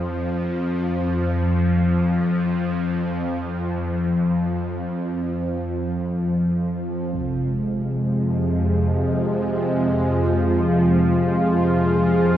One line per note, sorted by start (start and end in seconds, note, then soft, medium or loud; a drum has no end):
0.00 7.10 F2 medium
0.00 7.11 F3 medium
7.12 12.37 F2 medium
7.12 12.37 C3 medium
7.12 12.37 F3 medium
7.12 impact medium
7.36 12.37 G#3 medium
9.89 12.37 F4 medium
11.02 12.37 G#4 medium